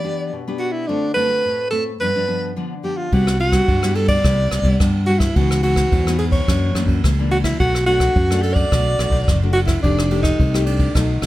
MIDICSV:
0, 0, Header, 1, 5, 480
1, 0, Start_track
1, 0, Tempo, 559701
1, 759, Time_signature, 4, 2, 24, 8
1, 9658, End_track
2, 0, Start_track
2, 0, Title_t, "Alto saxophone"
2, 0, Program_c, 0, 65
2, 0, Note_on_c, 0, 74, 96
2, 354, Note_off_c, 0, 74, 0
2, 505, Note_on_c, 0, 66, 83
2, 616, Note_on_c, 0, 64, 75
2, 629, Note_off_c, 0, 66, 0
2, 748, Note_on_c, 0, 62, 91
2, 761, Note_off_c, 0, 64, 0
2, 972, Note_off_c, 0, 62, 0
2, 977, Note_on_c, 0, 71, 92
2, 1435, Note_off_c, 0, 71, 0
2, 1463, Note_on_c, 0, 69, 73
2, 1575, Note_off_c, 0, 69, 0
2, 1715, Note_on_c, 0, 71, 80
2, 2173, Note_off_c, 0, 71, 0
2, 2438, Note_on_c, 0, 67, 85
2, 2549, Note_on_c, 0, 65, 73
2, 2562, Note_off_c, 0, 67, 0
2, 2688, Note_on_c, 0, 66, 86
2, 2701, Note_off_c, 0, 65, 0
2, 2914, Note_off_c, 0, 66, 0
2, 2919, Note_on_c, 0, 66, 96
2, 3390, Note_on_c, 0, 69, 85
2, 3403, Note_off_c, 0, 66, 0
2, 3498, Note_off_c, 0, 69, 0
2, 3503, Note_on_c, 0, 74, 94
2, 4198, Note_off_c, 0, 74, 0
2, 4343, Note_on_c, 0, 66, 89
2, 4454, Note_on_c, 0, 64, 78
2, 4466, Note_off_c, 0, 66, 0
2, 4597, Note_on_c, 0, 66, 87
2, 4610, Note_off_c, 0, 64, 0
2, 4824, Note_off_c, 0, 66, 0
2, 4830, Note_on_c, 0, 66, 90
2, 5281, Note_off_c, 0, 66, 0
2, 5304, Note_on_c, 0, 68, 75
2, 5362, Note_off_c, 0, 68, 0
2, 5421, Note_on_c, 0, 73, 77
2, 5885, Note_off_c, 0, 73, 0
2, 6269, Note_on_c, 0, 66, 79
2, 6325, Note_off_c, 0, 66, 0
2, 6380, Note_on_c, 0, 64, 73
2, 6501, Note_off_c, 0, 64, 0
2, 6516, Note_on_c, 0, 66, 97
2, 6737, Note_off_c, 0, 66, 0
2, 6742, Note_on_c, 0, 66, 93
2, 7220, Note_on_c, 0, 69, 97
2, 7233, Note_off_c, 0, 66, 0
2, 7324, Note_on_c, 0, 74, 99
2, 7337, Note_off_c, 0, 69, 0
2, 8061, Note_off_c, 0, 74, 0
2, 8173, Note_on_c, 0, 66, 85
2, 8232, Note_off_c, 0, 66, 0
2, 8288, Note_on_c, 0, 64, 68
2, 8413, Note_off_c, 0, 64, 0
2, 8428, Note_on_c, 0, 62, 88
2, 8763, Note_off_c, 0, 62, 0
2, 8768, Note_on_c, 0, 63, 80
2, 9137, Note_on_c, 0, 62, 78
2, 9150, Note_off_c, 0, 63, 0
2, 9389, Note_on_c, 0, 63, 66
2, 9402, Note_off_c, 0, 62, 0
2, 9658, Note_off_c, 0, 63, 0
2, 9658, End_track
3, 0, Start_track
3, 0, Title_t, "Nylon-string guitar"
3, 0, Program_c, 1, 24
3, 0, Note_on_c, 1, 52, 49
3, 33, Note_on_c, 1, 59, 53
3, 37, Note_on_c, 1, 62, 54
3, 38, Note_on_c, 1, 67, 62
3, 255, Note_off_c, 1, 52, 0
3, 281, Note_on_c, 1, 47, 54
3, 358, Note_off_c, 1, 59, 0
3, 359, Note_off_c, 1, 62, 0
3, 360, Note_off_c, 1, 67, 0
3, 408, Note_on_c, 1, 59, 55
3, 413, Note_on_c, 1, 62, 59
3, 417, Note_on_c, 1, 67, 64
3, 725, Note_off_c, 1, 59, 0
3, 728, Note_off_c, 1, 62, 0
3, 729, Note_off_c, 1, 67, 0
3, 736, Note_off_c, 1, 47, 0
3, 759, Note_on_c, 1, 50, 57
3, 764, Note_on_c, 1, 57, 53
3, 764, Note_on_c, 1, 60, 61
3, 768, Note_on_c, 1, 65, 56
3, 902, Note_off_c, 1, 57, 0
3, 903, Note_off_c, 1, 60, 0
3, 905, Note_off_c, 1, 65, 0
3, 991, Note_on_c, 1, 57, 61
3, 995, Note_on_c, 1, 60, 50
3, 1001, Note_on_c, 1, 65, 61
3, 1077, Note_off_c, 1, 57, 0
3, 1079, Note_off_c, 1, 60, 0
3, 1081, Note_off_c, 1, 65, 0
3, 1102, Note_on_c, 1, 57, 49
3, 1106, Note_on_c, 1, 60, 54
3, 1110, Note_on_c, 1, 65, 52
3, 1216, Note_off_c, 1, 50, 0
3, 1243, Note_on_c, 1, 45, 52
3, 1433, Note_off_c, 1, 57, 0
3, 1435, Note_off_c, 1, 60, 0
3, 1436, Note_off_c, 1, 65, 0
3, 1471, Note_on_c, 1, 57, 54
3, 1477, Note_on_c, 1, 60, 53
3, 1478, Note_on_c, 1, 65, 48
3, 1631, Note_off_c, 1, 57, 0
3, 1632, Note_off_c, 1, 60, 0
3, 1634, Note_off_c, 1, 65, 0
3, 1698, Note_off_c, 1, 45, 0
3, 1720, Note_on_c, 1, 43, 49
3, 1721, Note_on_c, 1, 53, 42
3, 1726, Note_on_c, 1, 59, 42
3, 1729, Note_on_c, 1, 62, 55
3, 1792, Note_off_c, 1, 53, 0
3, 1794, Note_off_c, 1, 59, 0
3, 1797, Note_off_c, 1, 62, 0
3, 1844, Note_on_c, 1, 53, 48
3, 1849, Note_on_c, 1, 59, 56
3, 1851, Note_on_c, 1, 62, 67
3, 1924, Note_off_c, 1, 53, 0
3, 1926, Note_off_c, 1, 59, 0
3, 1928, Note_off_c, 1, 62, 0
3, 1948, Note_on_c, 1, 53, 56
3, 1952, Note_on_c, 1, 59, 52
3, 1957, Note_on_c, 1, 62, 61
3, 2156, Note_off_c, 1, 53, 0
3, 2158, Note_off_c, 1, 59, 0
3, 2160, Note_off_c, 1, 62, 0
3, 2177, Note_off_c, 1, 43, 0
3, 2198, Note_on_c, 1, 50, 51
3, 2201, Note_on_c, 1, 53, 52
3, 2203, Note_on_c, 1, 59, 54
3, 2208, Note_on_c, 1, 62, 56
3, 2341, Note_off_c, 1, 53, 0
3, 2343, Note_off_c, 1, 59, 0
3, 2345, Note_off_c, 1, 62, 0
3, 2430, Note_on_c, 1, 53, 44
3, 2437, Note_on_c, 1, 59, 44
3, 2438, Note_on_c, 1, 62, 50
3, 2638, Note_off_c, 1, 53, 0
3, 2639, Note_off_c, 1, 59, 0
3, 2641, Note_off_c, 1, 62, 0
3, 2656, Note_off_c, 1, 50, 0
3, 2678, Note_on_c, 1, 48, 61
3, 2680, Note_on_c, 1, 55, 61
3, 2685, Note_on_c, 1, 59, 55
3, 2686, Note_on_c, 1, 64, 59
3, 2905, Note_off_c, 1, 55, 0
3, 2907, Note_off_c, 1, 59, 0
3, 2909, Note_off_c, 1, 64, 0
3, 3020, Note_on_c, 1, 55, 55
3, 3024, Note_on_c, 1, 59, 49
3, 3028, Note_on_c, 1, 64, 55
3, 3136, Note_off_c, 1, 48, 0
3, 3160, Note_on_c, 1, 43, 52
3, 3233, Note_off_c, 1, 55, 0
3, 3234, Note_off_c, 1, 59, 0
3, 3236, Note_off_c, 1, 64, 0
3, 3286, Note_on_c, 1, 55, 61
3, 3289, Note_on_c, 1, 59, 62
3, 3290, Note_on_c, 1, 64, 73
3, 3606, Note_off_c, 1, 55, 0
3, 3607, Note_off_c, 1, 59, 0
3, 3608, Note_off_c, 1, 64, 0
3, 3617, Note_off_c, 1, 43, 0
3, 3640, Note_on_c, 1, 48, 51
3, 3642, Note_on_c, 1, 55, 52
3, 3645, Note_on_c, 1, 59, 47
3, 3649, Note_on_c, 1, 64, 53
3, 3963, Note_off_c, 1, 55, 0
3, 3965, Note_off_c, 1, 59, 0
3, 3966, Note_off_c, 1, 64, 0
3, 3979, Note_on_c, 1, 55, 63
3, 3986, Note_on_c, 1, 59, 56
3, 3988, Note_on_c, 1, 64, 61
3, 4097, Note_off_c, 1, 48, 0
3, 4118, Note_on_c, 1, 43, 53
3, 4313, Note_off_c, 1, 55, 0
3, 4314, Note_off_c, 1, 59, 0
3, 4316, Note_off_c, 1, 64, 0
3, 4349, Note_on_c, 1, 55, 46
3, 4356, Note_on_c, 1, 59, 47
3, 4357, Note_on_c, 1, 64, 48
3, 4497, Note_off_c, 1, 55, 0
3, 4498, Note_off_c, 1, 59, 0
3, 4500, Note_off_c, 1, 64, 0
3, 4576, Note_off_c, 1, 43, 0
3, 4598, Note_on_c, 1, 49, 60
3, 4601, Note_on_c, 1, 52, 56
3, 4605, Note_on_c, 1, 59, 56
3, 4606, Note_on_c, 1, 63, 64
3, 4802, Note_off_c, 1, 52, 0
3, 4803, Note_off_c, 1, 59, 0
3, 4805, Note_off_c, 1, 63, 0
3, 4826, Note_on_c, 1, 52, 57
3, 4829, Note_on_c, 1, 59, 47
3, 4834, Note_on_c, 1, 63, 57
3, 5056, Note_off_c, 1, 49, 0
3, 5080, Note_on_c, 1, 44, 59
3, 5155, Note_off_c, 1, 52, 0
3, 5157, Note_off_c, 1, 59, 0
3, 5158, Note_off_c, 1, 63, 0
3, 5205, Note_on_c, 1, 52, 59
3, 5209, Note_on_c, 1, 59, 62
3, 5213, Note_on_c, 1, 63, 67
3, 5524, Note_off_c, 1, 52, 0
3, 5527, Note_off_c, 1, 59, 0
3, 5528, Note_off_c, 1, 63, 0
3, 5537, Note_off_c, 1, 44, 0
3, 5560, Note_on_c, 1, 42, 53
3, 5562, Note_on_c, 1, 52, 47
3, 5564, Note_on_c, 1, 58, 45
3, 5569, Note_on_c, 1, 62, 54
3, 5762, Note_off_c, 1, 52, 0
3, 5764, Note_off_c, 1, 58, 0
3, 5766, Note_off_c, 1, 62, 0
3, 5790, Note_on_c, 1, 52, 55
3, 5795, Note_on_c, 1, 58, 55
3, 5797, Note_on_c, 1, 62, 52
3, 6016, Note_off_c, 1, 42, 0
3, 6117, Note_off_c, 1, 52, 0
3, 6119, Note_off_c, 1, 58, 0
3, 6120, Note_off_c, 1, 62, 0
3, 6163, Note_on_c, 1, 52, 58
3, 6166, Note_on_c, 1, 58, 55
3, 6172, Note_on_c, 1, 62, 70
3, 6483, Note_off_c, 1, 52, 0
3, 6485, Note_off_c, 1, 58, 0
3, 6486, Note_off_c, 1, 62, 0
3, 6522, Note_on_c, 1, 47, 59
3, 6524, Note_on_c, 1, 57, 54
3, 6525, Note_on_c, 1, 62, 51
3, 6531, Note_on_c, 1, 66, 69
3, 6662, Note_off_c, 1, 57, 0
3, 6664, Note_off_c, 1, 62, 0
3, 6666, Note_off_c, 1, 66, 0
3, 6748, Note_on_c, 1, 57, 54
3, 6752, Note_on_c, 1, 62, 61
3, 6756, Note_on_c, 1, 66, 57
3, 6977, Note_off_c, 1, 47, 0
3, 6979, Note_off_c, 1, 57, 0
3, 6981, Note_off_c, 1, 62, 0
3, 6983, Note_off_c, 1, 66, 0
3, 7000, Note_on_c, 1, 42, 49
3, 7124, Note_on_c, 1, 57, 62
3, 7129, Note_on_c, 1, 62, 65
3, 7133, Note_on_c, 1, 66, 67
3, 7443, Note_off_c, 1, 57, 0
3, 7446, Note_off_c, 1, 62, 0
3, 7447, Note_off_c, 1, 66, 0
3, 7455, Note_off_c, 1, 42, 0
3, 7478, Note_on_c, 1, 47, 48
3, 7478, Note_on_c, 1, 57, 48
3, 7481, Note_on_c, 1, 62, 44
3, 7485, Note_on_c, 1, 66, 51
3, 7680, Note_off_c, 1, 57, 0
3, 7681, Note_off_c, 1, 62, 0
3, 7683, Note_off_c, 1, 66, 0
3, 7709, Note_on_c, 1, 57, 51
3, 7712, Note_on_c, 1, 62, 58
3, 7716, Note_on_c, 1, 66, 57
3, 7934, Note_off_c, 1, 47, 0
3, 7939, Note_off_c, 1, 57, 0
3, 7940, Note_off_c, 1, 62, 0
3, 7942, Note_off_c, 1, 66, 0
3, 7960, Note_on_c, 1, 42, 56
3, 8083, Note_on_c, 1, 57, 62
3, 8089, Note_on_c, 1, 62, 63
3, 8091, Note_on_c, 1, 66, 66
3, 8403, Note_off_c, 1, 57, 0
3, 8403, Note_off_c, 1, 62, 0
3, 8406, Note_off_c, 1, 66, 0
3, 8414, Note_off_c, 1, 42, 0
3, 8435, Note_on_c, 1, 53, 60
3, 8437, Note_on_c, 1, 57, 56
3, 8439, Note_on_c, 1, 63, 60
3, 8444, Note_on_c, 1, 67, 59
3, 8638, Note_off_c, 1, 57, 0
3, 8640, Note_off_c, 1, 63, 0
3, 8641, Note_off_c, 1, 67, 0
3, 8665, Note_on_c, 1, 57, 49
3, 8668, Note_on_c, 1, 63, 53
3, 8674, Note_on_c, 1, 67, 56
3, 8892, Note_off_c, 1, 53, 0
3, 8910, Note_on_c, 1, 48, 53
3, 8992, Note_off_c, 1, 57, 0
3, 8994, Note_off_c, 1, 63, 0
3, 8995, Note_off_c, 1, 67, 0
3, 9037, Note_on_c, 1, 57, 61
3, 9041, Note_on_c, 1, 63, 59
3, 9045, Note_on_c, 1, 67, 71
3, 9358, Note_off_c, 1, 57, 0
3, 9360, Note_off_c, 1, 63, 0
3, 9361, Note_off_c, 1, 67, 0
3, 9369, Note_off_c, 1, 48, 0
3, 9386, Note_on_c, 1, 47, 46
3, 9389, Note_on_c, 1, 54, 50
3, 9390, Note_on_c, 1, 57, 49
3, 9396, Note_on_c, 1, 63, 54
3, 9532, Note_off_c, 1, 54, 0
3, 9534, Note_off_c, 1, 57, 0
3, 9536, Note_off_c, 1, 63, 0
3, 9620, Note_on_c, 1, 54, 52
3, 9624, Note_on_c, 1, 57, 46
3, 9628, Note_on_c, 1, 63, 59
3, 9658, Note_off_c, 1, 47, 0
3, 9658, Note_off_c, 1, 54, 0
3, 9658, Note_off_c, 1, 57, 0
3, 9658, Note_off_c, 1, 63, 0
3, 9658, End_track
4, 0, Start_track
4, 0, Title_t, "Fingered electric bass"
4, 0, Program_c, 2, 33
4, 2681, Note_on_c, 2, 36, 96
4, 3089, Note_off_c, 2, 36, 0
4, 3158, Note_on_c, 2, 43, 85
4, 3567, Note_off_c, 2, 43, 0
4, 3639, Note_on_c, 2, 36, 91
4, 3844, Note_off_c, 2, 36, 0
4, 3872, Note_on_c, 2, 36, 68
4, 3957, Note_off_c, 2, 36, 0
4, 3962, Note_on_c, 2, 36, 75
4, 4081, Note_off_c, 2, 36, 0
4, 4118, Note_on_c, 2, 43, 78
4, 4527, Note_off_c, 2, 43, 0
4, 4596, Note_on_c, 2, 37, 89
4, 5006, Note_off_c, 2, 37, 0
4, 5078, Note_on_c, 2, 40, 91
4, 5487, Note_off_c, 2, 40, 0
4, 5558, Note_on_c, 2, 42, 84
4, 5763, Note_off_c, 2, 42, 0
4, 5786, Note_on_c, 2, 42, 78
4, 5877, Note_off_c, 2, 42, 0
4, 5882, Note_on_c, 2, 42, 80
4, 6001, Note_off_c, 2, 42, 0
4, 6039, Note_on_c, 2, 37, 73
4, 6447, Note_off_c, 2, 37, 0
4, 6518, Note_on_c, 2, 35, 88
4, 6926, Note_off_c, 2, 35, 0
4, 6996, Note_on_c, 2, 42, 93
4, 7405, Note_off_c, 2, 42, 0
4, 7478, Note_on_c, 2, 35, 85
4, 7682, Note_off_c, 2, 35, 0
4, 7709, Note_on_c, 2, 35, 84
4, 7798, Note_off_c, 2, 35, 0
4, 7803, Note_on_c, 2, 35, 73
4, 7920, Note_off_c, 2, 35, 0
4, 7957, Note_on_c, 2, 30, 73
4, 8365, Note_off_c, 2, 30, 0
4, 8436, Note_on_c, 2, 29, 92
4, 8844, Note_off_c, 2, 29, 0
4, 8915, Note_on_c, 2, 36, 87
4, 9323, Note_off_c, 2, 36, 0
4, 9391, Note_on_c, 2, 35, 88
4, 9597, Note_off_c, 2, 35, 0
4, 9623, Note_on_c, 2, 35, 75
4, 9658, Note_off_c, 2, 35, 0
4, 9658, End_track
5, 0, Start_track
5, 0, Title_t, "Drums"
5, 2679, Note_on_c, 9, 51, 46
5, 2680, Note_on_c, 9, 36, 59
5, 2764, Note_off_c, 9, 51, 0
5, 2766, Note_off_c, 9, 36, 0
5, 2804, Note_on_c, 9, 37, 61
5, 2890, Note_off_c, 9, 37, 0
5, 2911, Note_on_c, 9, 51, 44
5, 2996, Note_off_c, 9, 51, 0
5, 3020, Note_on_c, 9, 37, 58
5, 3020, Note_on_c, 9, 51, 40
5, 3021, Note_on_c, 9, 36, 52
5, 3106, Note_off_c, 9, 37, 0
5, 3106, Note_off_c, 9, 51, 0
5, 3107, Note_off_c, 9, 36, 0
5, 3157, Note_on_c, 9, 51, 43
5, 3159, Note_on_c, 9, 36, 72
5, 3243, Note_off_c, 9, 51, 0
5, 3245, Note_off_c, 9, 36, 0
5, 3282, Note_on_c, 9, 37, 70
5, 3368, Note_off_c, 9, 37, 0
5, 3389, Note_on_c, 9, 51, 46
5, 3474, Note_off_c, 9, 51, 0
5, 3500, Note_on_c, 9, 51, 47
5, 3501, Note_on_c, 9, 36, 68
5, 3586, Note_off_c, 9, 51, 0
5, 3587, Note_off_c, 9, 36, 0
5, 3638, Note_on_c, 9, 37, 63
5, 3638, Note_on_c, 9, 51, 47
5, 3639, Note_on_c, 9, 36, 72
5, 3724, Note_off_c, 9, 37, 0
5, 3724, Note_off_c, 9, 51, 0
5, 3725, Note_off_c, 9, 36, 0
5, 3870, Note_on_c, 9, 37, 61
5, 3870, Note_on_c, 9, 51, 46
5, 3956, Note_off_c, 9, 37, 0
5, 3956, Note_off_c, 9, 51, 0
5, 3980, Note_on_c, 9, 51, 42
5, 3981, Note_on_c, 9, 36, 61
5, 4066, Note_off_c, 9, 51, 0
5, 4067, Note_off_c, 9, 36, 0
5, 4117, Note_on_c, 9, 37, 63
5, 4117, Note_on_c, 9, 51, 44
5, 4118, Note_on_c, 9, 36, 80
5, 4202, Note_off_c, 9, 37, 0
5, 4202, Note_off_c, 9, 51, 0
5, 4204, Note_off_c, 9, 36, 0
5, 4349, Note_on_c, 9, 51, 46
5, 4435, Note_off_c, 9, 51, 0
5, 4460, Note_on_c, 9, 36, 66
5, 4460, Note_on_c, 9, 37, 64
5, 4460, Note_on_c, 9, 51, 50
5, 4546, Note_off_c, 9, 36, 0
5, 4546, Note_off_c, 9, 37, 0
5, 4546, Note_off_c, 9, 51, 0
5, 4596, Note_on_c, 9, 51, 50
5, 4598, Note_on_c, 9, 36, 64
5, 4681, Note_off_c, 9, 51, 0
5, 4684, Note_off_c, 9, 36, 0
5, 4722, Note_on_c, 9, 37, 65
5, 4808, Note_off_c, 9, 37, 0
5, 4829, Note_on_c, 9, 51, 50
5, 4914, Note_off_c, 9, 51, 0
5, 4940, Note_on_c, 9, 36, 60
5, 4940, Note_on_c, 9, 37, 59
5, 4940, Note_on_c, 9, 51, 41
5, 5026, Note_off_c, 9, 36, 0
5, 5026, Note_off_c, 9, 37, 0
5, 5026, Note_off_c, 9, 51, 0
5, 5077, Note_on_c, 9, 51, 44
5, 5078, Note_on_c, 9, 36, 73
5, 5163, Note_off_c, 9, 51, 0
5, 5164, Note_off_c, 9, 36, 0
5, 5204, Note_on_c, 9, 37, 67
5, 5290, Note_off_c, 9, 37, 0
5, 5308, Note_on_c, 9, 51, 48
5, 5394, Note_off_c, 9, 51, 0
5, 5420, Note_on_c, 9, 36, 71
5, 5420, Note_on_c, 9, 51, 46
5, 5506, Note_off_c, 9, 36, 0
5, 5506, Note_off_c, 9, 51, 0
5, 5558, Note_on_c, 9, 36, 60
5, 5559, Note_on_c, 9, 37, 65
5, 5559, Note_on_c, 9, 51, 48
5, 5644, Note_off_c, 9, 36, 0
5, 5645, Note_off_c, 9, 37, 0
5, 5645, Note_off_c, 9, 51, 0
5, 5790, Note_on_c, 9, 37, 57
5, 5790, Note_on_c, 9, 51, 40
5, 5875, Note_off_c, 9, 37, 0
5, 5875, Note_off_c, 9, 51, 0
5, 5901, Note_on_c, 9, 36, 57
5, 5902, Note_on_c, 9, 51, 40
5, 5986, Note_off_c, 9, 36, 0
5, 5988, Note_off_c, 9, 51, 0
5, 6037, Note_on_c, 9, 37, 64
5, 6037, Note_on_c, 9, 51, 44
5, 6038, Note_on_c, 9, 36, 80
5, 6123, Note_off_c, 9, 37, 0
5, 6123, Note_off_c, 9, 51, 0
5, 6124, Note_off_c, 9, 36, 0
5, 6270, Note_on_c, 9, 51, 46
5, 6356, Note_off_c, 9, 51, 0
5, 6381, Note_on_c, 9, 36, 59
5, 6381, Note_on_c, 9, 37, 65
5, 6381, Note_on_c, 9, 51, 44
5, 6466, Note_off_c, 9, 36, 0
5, 6467, Note_off_c, 9, 37, 0
5, 6467, Note_off_c, 9, 51, 0
5, 6519, Note_on_c, 9, 36, 61
5, 6519, Note_on_c, 9, 51, 46
5, 6604, Note_off_c, 9, 36, 0
5, 6605, Note_off_c, 9, 51, 0
5, 6644, Note_on_c, 9, 37, 60
5, 6729, Note_off_c, 9, 37, 0
5, 6749, Note_on_c, 9, 51, 40
5, 6835, Note_off_c, 9, 51, 0
5, 6860, Note_on_c, 9, 36, 60
5, 6860, Note_on_c, 9, 37, 61
5, 6860, Note_on_c, 9, 51, 40
5, 6946, Note_off_c, 9, 36, 0
5, 6946, Note_off_c, 9, 37, 0
5, 6946, Note_off_c, 9, 51, 0
5, 6996, Note_on_c, 9, 51, 39
5, 6998, Note_on_c, 9, 36, 74
5, 7082, Note_off_c, 9, 51, 0
5, 7084, Note_off_c, 9, 36, 0
5, 7123, Note_on_c, 9, 37, 61
5, 7209, Note_off_c, 9, 37, 0
5, 7229, Note_on_c, 9, 51, 47
5, 7315, Note_off_c, 9, 51, 0
5, 7340, Note_on_c, 9, 36, 70
5, 7340, Note_on_c, 9, 51, 47
5, 7426, Note_off_c, 9, 36, 0
5, 7426, Note_off_c, 9, 51, 0
5, 7478, Note_on_c, 9, 36, 69
5, 7478, Note_on_c, 9, 37, 67
5, 7478, Note_on_c, 9, 51, 51
5, 7563, Note_off_c, 9, 37, 0
5, 7563, Note_off_c, 9, 51, 0
5, 7564, Note_off_c, 9, 36, 0
5, 7711, Note_on_c, 9, 37, 65
5, 7711, Note_on_c, 9, 51, 46
5, 7796, Note_off_c, 9, 37, 0
5, 7796, Note_off_c, 9, 51, 0
5, 7820, Note_on_c, 9, 36, 58
5, 7820, Note_on_c, 9, 51, 41
5, 7906, Note_off_c, 9, 36, 0
5, 7906, Note_off_c, 9, 51, 0
5, 7957, Note_on_c, 9, 36, 82
5, 7957, Note_on_c, 9, 37, 60
5, 7957, Note_on_c, 9, 51, 43
5, 8043, Note_off_c, 9, 36, 0
5, 8043, Note_off_c, 9, 37, 0
5, 8043, Note_off_c, 9, 51, 0
5, 8188, Note_on_c, 9, 51, 44
5, 8274, Note_off_c, 9, 51, 0
5, 8297, Note_on_c, 9, 37, 63
5, 8297, Note_on_c, 9, 51, 54
5, 8298, Note_on_c, 9, 36, 62
5, 8383, Note_off_c, 9, 37, 0
5, 8383, Note_off_c, 9, 51, 0
5, 8384, Note_off_c, 9, 36, 0
5, 8436, Note_on_c, 9, 36, 61
5, 8436, Note_on_c, 9, 51, 47
5, 8522, Note_off_c, 9, 36, 0
5, 8522, Note_off_c, 9, 51, 0
5, 8563, Note_on_c, 9, 37, 65
5, 8649, Note_off_c, 9, 37, 0
5, 8666, Note_on_c, 9, 51, 50
5, 8752, Note_off_c, 9, 51, 0
5, 8777, Note_on_c, 9, 36, 56
5, 8779, Note_on_c, 9, 37, 62
5, 8779, Note_on_c, 9, 51, 41
5, 8863, Note_off_c, 9, 36, 0
5, 8864, Note_off_c, 9, 37, 0
5, 8864, Note_off_c, 9, 51, 0
5, 8915, Note_on_c, 9, 36, 77
5, 8917, Note_on_c, 9, 51, 43
5, 9001, Note_off_c, 9, 36, 0
5, 9003, Note_off_c, 9, 51, 0
5, 9041, Note_on_c, 9, 37, 67
5, 9127, Note_off_c, 9, 37, 0
5, 9145, Note_on_c, 9, 51, 56
5, 9231, Note_off_c, 9, 51, 0
5, 9255, Note_on_c, 9, 36, 65
5, 9256, Note_on_c, 9, 51, 48
5, 9341, Note_off_c, 9, 36, 0
5, 9342, Note_off_c, 9, 51, 0
5, 9393, Note_on_c, 9, 36, 63
5, 9393, Note_on_c, 9, 37, 72
5, 9393, Note_on_c, 9, 51, 49
5, 9478, Note_off_c, 9, 37, 0
5, 9478, Note_off_c, 9, 51, 0
5, 9479, Note_off_c, 9, 36, 0
5, 9623, Note_on_c, 9, 37, 59
5, 9623, Note_on_c, 9, 51, 49
5, 9658, Note_off_c, 9, 37, 0
5, 9658, Note_off_c, 9, 51, 0
5, 9658, End_track
0, 0, End_of_file